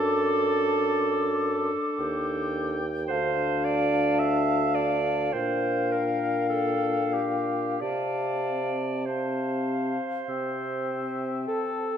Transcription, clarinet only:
0.00 2.79 A4 medium
3.08 3.66 C5 medium
3.65 4.21 D5 medium
4.19 4.76 E5 medium
4.75 5.35 D5 medium
5.33 5.93 C5 medium
5.91 6.49 A#4 medium
6.49 7.15 A4 medium
7.14 7.82 G4 medium
7.81 9.08 D5 medium
9.06 11.97 C5 soft

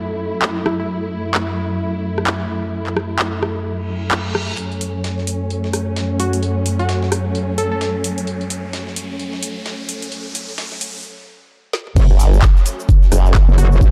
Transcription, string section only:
0.00 4.54 F#2 medium
0.00 4.54 F#3 medium
0.00 4.54 A3 medium
0.00 4.57 E4 medium
4.58 11.00 F#2 medium
4.58 11.00 F#3 medium
4.58 11.00 A3 medium
4.58 11.00 C#4 medium
11.96 13.91 F#3 medium
11.96 13.91 A3 medium
11.96 13.91 C#4 loud

